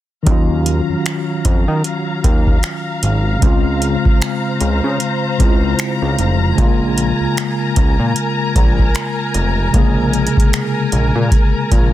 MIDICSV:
0, 0, Header, 1, 5, 480
1, 0, Start_track
1, 0, Tempo, 789474
1, 161, Time_signature, 4, 2, 24, 8
1, 7254, End_track
2, 0, Start_track
2, 0, Title_t, "String section"
2, 0, Program_c, 0, 48
2, 163, Note_on_c, 0, 54, 76
2, 163, Note_on_c, 0, 77, 74
2, 163, Note_on_c, 0, 82, 88
2, 2063, Note_off_c, 0, 54, 0
2, 2082, Note_on_c, 0, 72, 74
2, 3978, Note_off_c, 0, 77, 0
2, 3982, Note_off_c, 0, 72, 0
2, 4000, Note_on_c, 0, 80, 68
2, 4001, Note_on_c, 0, 70, 78
2, 7254, Note_off_c, 0, 70, 0
2, 7254, Note_off_c, 0, 80, 0
2, 7254, Note_off_c, 0, 82, 0
2, 7254, End_track
3, 0, Start_track
3, 0, Title_t, "Tine electric piano"
3, 0, Program_c, 1, 4
3, 138, Note_on_c, 1, 51, 73
3, 154, Note_on_c, 1, 54, 63
3, 171, Note_on_c, 1, 61, 64
3, 187, Note_on_c, 1, 65, 79
3, 264, Control_c, 1, 64, 127
3, 2045, Note_off_c, 1, 51, 0
3, 2054, Note_off_c, 1, 54, 0
3, 2057, Note_on_c, 1, 49, 71
3, 2062, Note_off_c, 1, 61, 0
3, 2070, Note_off_c, 1, 65, 0
3, 2074, Note_on_c, 1, 56, 70
3, 2089, Control_c, 1, 64, 0
3, 2090, Note_on_c, 1, 60, 68
3, 2106, Note_on_c, 1, 65, 82
3, 2212, Control_c, 1, 64, 127
3, 3245, Note_off_c, 1, 49, 0
3, 3254, Note_off_c, 1, 56, 0
3, 3262, Note_off_c, 1, 60, 0
3, 3270, Note_off_c, 1, 65, 0
3, 3270, Note_on_c, 1, 49, 57
3, 3278, Note_on_c, 1, 56, 52
3, 3287, Note_on_c, 1, 60, 47
3, 3294, Note_on_c, 1, 64, 49
3, 3334, Note_off_c, 1, 64, 0
3, 3334, Note_on_c, 1, 65, 59
3, 3970, Note_off_c, 1, 49, 0
3, 3978, Note_on_c, 1, 49, 74
3, 3987, Note_off_c, 1, 56, 0
3, 3994, Note_on_c, 1, 56, 68
3, 4004, Note_off_c, 1, 60, 0
3, 4008, Control_c, 1, 64, 0
3, 4010, Note_on_c, 1, 58, 68
3, 4019, Note_off_c, 1, 65, 0
3, 4026, Note_on_c, 1, 65, 86
3, 4102, Control_c, 1, 64, 127
3, 5885, Note_off_c, 1, 49, 0
3, 5893, Note_off_c, 1, 56, 0
3, 5898, Note_on_c, 1, 48, 57
3, 5901, Note_off_c, 1, 58, 0
3, 5909, Note_off_c, 1, 65, 0
3, 5915, Note_on_c, 1, 56, 67
3, 5930, Note_on_c, 1, 58, 67
3, 5937, Note_on_c, 1, 49, 75
3, 5947, Note_on_c, 1, 68, 81
3, 5956, Note_off_c, 1, 48, 0
3, 7254, Note_off_c, 1, 49, 0
3, 7254, Note_off_c, 1, 56, 0
3, 7254, Note_off_c, 1, 58, 0
3, 7254, Note_off_c, 1, 68, 0
3, 7254, End_track
4, 0, Start_track
4, 0, Title_t, "Analog synth bass"
4, 0, Program_c, 2, 38
4, 162, Note_on_c, 2, 39, 98
4, 493, Note_off_c, 2, 39, 0
4, 542, Note_on_c, 2, 41, 48
4, 582, Note_off_c, 2, 41, 0
4, 882, Note_on_c, 2, 41, 89
4, 1004, Note_off_c, 2, 41, 0
4, 1021, Note_on_c, 2, 51, 96
4, 1109, Note_off_c, 2, 51, 0
4, 1362, Note_on_c, 2, 39, 88
4, 1572, Note_off_c, 2, 39, 0
4, 1841, Note_on_c, 2, 32, 89
4, 2051, Note_off_c, 2, 32, 0
4, 2081, Note_on_c, 2, 37, 99
4, 2413, Note_off_c, 2, 37, 0
4, 2465, Note_on_c, 2, 37, 48
4, 2504, Note_off_c, 2, 37, 0
4, 2802, Note_on_c, 2, 37, 87
4, 2923, Note_off_c, 2, 37, 0
4, 2941, Note_on_c, 2, 49, 95
4, 3029, Note_off_c, 2, 49, 0
4, 3282, Note_on_c, 2, 37, 89
4, 3491, Note_off_c, 2, 37, 0
4, 3660, Note_on_c, 2, 37, 92
4, 3749, Note_off_c, 2, 37, 0
4, 3762, Note_on_c, 2, 29, 85
4, 3971, Note_off_c, 2, 29, 0
4, 4001, Note_on_c, 2, 34, 99
4, 4333, Note_off_c, 2, 34, 0
4, 4380, Note_on_c, 2, 37, 49
4, 4421, Note_off_c, 2, 37, 0
4, 4722, Note_on_c, 2, 37, 85
4, 4843, Note_off_c, 2, 37, 0
4, 4859, Note_on_c, 2, 46, 95
4, 4948, Note_off_c, 2, 46, 0
4, 5202, Note_on_c, 2, 34, 91
4, 5411, Note_off_c, 2, 34, 0
4, 5681, Note_on_c, 2, 29, 92
4, 5891, Note_off_c, 2, 29, 0
4, 5921, Note_on_c, 2, 34, 98
4, 6253, Note_off_c, 2, 34, 0
4, 6305, Note_on_c, 2, 34, 49
4, 6344, Note_off_c, 2, 34, 0
4, 6641, Note_on_c, 2, 34, 84
4, 6763, Note_off_c, 2, 34, 0
4, 6781, Note_on_c, 2, 46, 100
4, 6869, Note_off_c, 2, 46, 0
4, 7122, Note_on_c, 2, 34, 92
4, 7254, Note_off_c, 2, 34, 0
4, 7254, End_track
5, 0, Start_track
5, 0, Title_t, "Drums"
5, 161, Note_on_c, 9, 36, 105
5, 161, Note_on_c, 9, 42, 61
5, 222, Note_off_c, 9, 36, 0
5, 222, Note_off_c, 9, 42, 0
5, 402, Note_on_c, 9, 42, 66
5, 462, Note_off_c, 9, 42, 0
5, 643, Note_on_c, 9, 42, 59
5, 646, Note_on_c, 9, 26, 108
5, 703, Note_off_c, 9, 42, 0
5, 707, Note_off_c, 9, 26, 0
5, 881, Note_on_c, 9, 42, 69
5, 882, Note_on_c, 9, 36, 86
5, 941, Note_off_c, 9, 42, 0
5, 943, Note_off_c, 9, 36, 0
5, 1121, Note_on_c, 9, 42, 63
5, 1182, Note_off_c, 9, 42, 0
5, 1362, Note_on_c, 9, 36, 86
5, 1363, Note_on_c, 9, 42, 67
5, 1423, Note_off_c, 9, 36, 0
5, 1424, Note_off_c, 9, 42, 0
5, 1503, Note_on_c, 9, 36, 79
5, 1563, Note_off_c, 9, 36, 0
5, 1598, Note_on_c, 9, 42, 53
5, 1604, Note_on_c, 9, 26, 106
5, 1659, Note_off_c, 9, 42, 0
5, 1665, Note_off_c, 9, 26, 0
5, 1841, Note_on_c, 9, 42, 72
5, 1901, Note_off_c, 9, 42, 0
5, 2081, Note_on_c, 9, 36, 108
5, 2081, Note_on_c, 9, 42, 62
5, 2141, Note_off_c, 9, 42, 0
5, 2142, Note_off_c, 9, 36, 0
5, 2321, Note_on_c, 9, 42, 67
5, 2382, Note_off_c, 9, 42, 0
5, 2465, Note_on_c, 9, 36, 87
5, 2526, Note_off_c, 9, 36, 0
5, 2563, Note_on_c, 9, 42, 57
5, 2567, Note_on_c, 9, 26, 111
5, 2624, Note_off_c, 9, 42, 0
5, 2628, Note_off_c, 9, 26, 0
5, 2800, Note_on_c, 9, 42, 65
5, 2861, Note_off_c, 9, 42, 0
5, 3040, Note_on_c, 9, 42, 63
5, 3101, Note_off_c, 9, 42, 0
5, 3281, Note_on_c, 9, 36, 88
5, 3283, Note_on_c, 9, 42, 73
5, 3342, Note_off_c, 9, 36, 0
5, 3343, Note_off_c, 9, 42, 0
5, 3519, Note_on_c, 9, 42, 55
5, 3524, Note_on_c, 9, 26, 109
5, 3579, Note_off_c, 9, 42, 0
5, 3585, Note_off_c, 9, 26, 0
5, 3761, Note_on_c, 9, 42, 68
5, 3822, Note_off_c, 9, 42, 0
5, 4001, Note_on_c, 9, 36, 106
5, 4002, Note_on_c, 9, 42, 59
5, 4062, Note_off_c, 9, 36, 0
5, 4063, Note_off_c, 9, 42, 0
5, 4241, Note_on_c, 9, 42, 69
5, 4302, Note_off_c, 9, 42, 0
5, 4483, Note_on_c, 9, 42, 57
5, 4487, Note_on_c, 9, 26, 106
5, 4544, Note_off_c, 9, 42, 0
5, 4548, Note_off_c, 9, 26, 0
5, 4720, Note_on_c, 9, 42, 73
5, 4721, Note_on_c, 9, 36, 88
5, 4780, Note_off_c, 9, 42, 0
5, 4782, Note_off_c, 9, 36, 0
5, 4960, Note_on_c, 9, 42, 63
5, 5021, Note_off_c, 9, 42, 0
5, 5202, Note_on_c, 9, 36, 85
5, 5203, Note_on_c, 9, 42, 72
5, 5262, Note_off_c, 9, 36, 0
5, 5264, Note_off_c, 9, 42, 0
5, 5343, Note_on_c, 9, 36, 84
5, 5404, Note_off_c, 9, 36, 0
5, 5440, Note_on_c, 9, 42, 52
5, 5445, Note_on_c, 9, 26, 114
5, 5501, Note_off_c, 9, 42, 0
5, 5506, Note_off_c, 9, 26, 0
5, 5681, Note_on_c, 9, 42, 73
5, 5742, Note_off_c, 9, 42, 0
5, 5921, Note_on_c, 9, 36, 103
5, 5922, Note_on_c, 9, 42, 61
5, 5982, Note_off_c, 9, 36, 0
5, 5982, Note_off_c, 9, 42, 0
5, 6162, Note_on_c, 9, 42, 40
5, 6223, Note_off_c, 9, 42, 0
5, 6242, Note_on_c, 9, 42, 54
5, 6302, Note_off_c, 9, 42, 0
5, 6305, Note_on_c, 9, 36, 88
5, 6322, Note_on_c, 9, 42, 65
5, 6366, Note_off_c, 9, 36, 0
5, 6382, Note_off_c, 9, 42, 0
5, 6404, Note_on_c, 9, 42, 63
5, 6407, Note_on_c, 9, 26, 115
5, 6464, Note_off_c, 9, 42, 0
5, 6468, Note_off_c, 9, 26, 0
5, 6641, Note_on_c, 9, 42, 72
5, 6702, Note_off_c, 9, 42, 0
5, 6878, Note_on_c, 9, 36, 97
5, 6882, Note_on_c, 9, 42, 62
5, 6939, Note_off_c, 9, 36, 0
5, 6942, Note_off_c, 9, 42, 0
5, 7122, Note_on_c, 9, 36, 84
5, 7123, Note_on_c, 9, 42, 71
5, 7183, Note_off_c, 9, 36, 0
5, 7184, Note_off_c, 9, 42, 0
5, 7254, End_track
0, 0, End_of_file